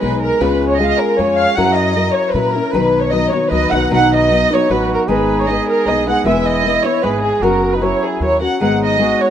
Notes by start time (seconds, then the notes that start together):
0.01 B1 G#3 B3 D#4 G#4 B4
0.22 A#4
0.40 C#2 C#3 G#3 C#4 F4 G#4 B4
0.69 C#5
0.76 G#3 C#4 F4 D#5
0.80 G#4 F5
0.86 D#5
0.98 A#4
1.17 F2 G#3 C#4 F4 G#4 C#5
1.36 F5
1.55 F#2 F#3 C#4 E4 A#4 F#5
1.74 D#5
1.95 F#3 C#4 E4 A#4
2.12 C#5
2.31 A#2 F#3 C#4 E4 B4
2.36 A#4
2.53 C#4 E4 A#4
2.72 B1 B2 D#3 F#3 B3 D#4 B4
3.00 C#5
3.11 F#3 B3 D#4 B4 D#5
3.31 F#3 B3 D#4 B4 C#5
3.49 C#2 F#3 B3 D#4 B4 D#5
3.72 B1 F#3 B3 D#4 B4 F#5
3.89 B1 B2 D#3 F#3 B3 D#4 B4
3.94 F#5
4.16 D#5
4.31 F#3 B3 D#4 B4
4.50 F#3 B3 D#4 B4 C#5
4.69 A1 F#3 B3 D#4 F#4 B4
4.94 A#4
5.07 G#1 G#2 D#3 G#3 B3 D#4 G#4 B4
5.39 C#5
5.47 G#3 B3 D#4 B4 D#5
5.69 A#4
5.86 B1 G#3 B3 D#4 B4 D#5
6.06 G#3 B3 D#4 B4 F#5
6.24 E1 E3 G#3 B3 E4 B4 E5
6.46 D#5
6.64 G#3 B3 E4 B4
6.83 B3 E4 B4 C#5
7.03 G#1 G#3 B3 E4 G#4 B4
7.22 G#4
7.40 F#1 F#3 C#4 F#4 A#4
7.72 D#4 B4
7.81 F#3 C#4 E4 F#4 A#4 C#5
8.04 G#4
8.20 D#2 F#3 C#4 F#4 A#4 C#5
8.41 C#4 F#4 A#4 F#5
8.60 G#1 G#2 D#3 G#3 B3 D#4 G#4 F#5
8.84 D#5
8.98 G#3 B3 D#4 F#4 G#4
9.20 C#5